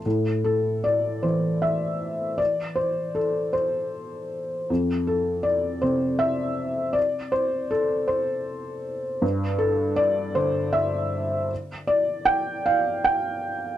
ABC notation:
X:1
M:6/8
L:1/8
Q:3/8=52
K:Am
V:1 name="Felt piano"
z A d c e2 | d c A c3 | z A d c e2 | d c A c3 |
z A d c e2 | z d g f g2 |]
V:2 name="Felt piano" clef=bass
A,,3 E,3- | E,6 | F,,3 C,3- | C,6 |
G,,3 D,3- | D,6 |]